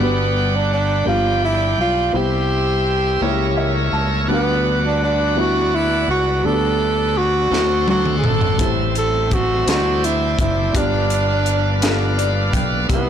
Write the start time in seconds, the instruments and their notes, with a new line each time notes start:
Already playing: upright piano B3 D4
0.00 fingered electric bass G1, upright piano G2 F#4 G4, string section D3 G3 D4, tonewheel organ G3 D5 F#5 B5, tenor saxophone B3
0.56 tenor saxophone D4
0.73 tenor saxophone D4
1.05 fingered electric bass G1, upright piano G2 F3 A#3 D4 G4, string section F3 G3 D4, tenor saxophone F4, tonewheel organ G5
1.11 upright piano B3
1.45 tenor saxophone E4
1.78 fingered electric bass B1, tenor saxophone F4
2.12 fingered electric bass C2, string section C3 E3 G3, upright piano C3 B3 C4 E4 G4, tonewheel organ G4 E5 C6
2.17 tenor saxophone G4
3.20 fingered electric bass C#2, upright piano C#3 A#3 C#4 E4 G4, string section A#3 C#4, tonewheel organ A#4 C#5
3.57 upright piano E5
3.93 fingered electric bass C#2, upright piano A5
4.27 fingered electric bass D2, upright piano D3 G3 B3 D4 F#4, string section B3 D4 F#4, tonewheel organ B4 D5 F#5
4.33 tenor saxophone B3
4.86 tenor saxophone D4
5.04 tenor saxophone D4
5.36 upright piano G3 B3 D4 E4, tenor saxophone F#4
5.75 tenor saxophone E4
6.08 fingered electric bass C#2, tenor saxophone F#4
6.43 fingered electric bass D2, string section D3, upright piano D3 G3 B3 D4 F#4, tenor saxophone A4, tonewheel organ D5
6.52 upright piano G4
7.18 tenor saxophone F#4
7.50 fingered electric bass D2, upright piano D3 A3 C4 D4 E4, string section F#3 A3 C4, tonewheel organ A4 F#5 C6, snare
7.59 upright piano F#4
7.88 tenor saxophone F#4, high tom
8.05 mid tom
8.18 tenor saxophone G#4
8.23 fingered electric bass G#1, tenor saxophone A4, mid tom
8.41 floor tom
8.57 fingered electric bass A1, upright piano A2 A3 B3 E4 G4, string section E3 G3, tonewheel organ E5, kick, closed hi-hat
8.65 upright piano C4
8.95 tenor saxophone A4, closed hi-hat
9.31 tenor saxophone F#4, kick, closed hi-hat
9.65 fingered electric bass D2, upright piano D3 G3 C4 D4 E4, string section D4, tenor saxophone F#4, tonewheel organ C5 D5, snare, closed hi-hat
10.04 tenor saxophone E4, closed hi-hat
10.39 fingered electric bass F#1, tenor saxophone E4, kick, closed hi-hat
10.73 fingered electric bass G1, upright piano G2 B3 D4 F4 G4, string section F3 G3 B3, tonewheel organ B4 F5, kick, closed hi-hat
10.77 tenor saxophone D4
11.10 closed hi-hat
11.46 closed hi-hat
11.81 upright piano B3 D4 F4 G4, snare, closed hi-hat
11.89 upright piano A4
12.18 upright piano D5, closed hi-hat
12.53 fingered electric bass B1, upright piano G5, kick, closed hi-hat
12.88 fingered electric bass C2, upright piano C3 G3 B3 D#4 G4, string section C3 E3, tonewheel organ B3 E5 C6, kick, closed hi-hat
12.93 tenor saxophone B3, upright piano E4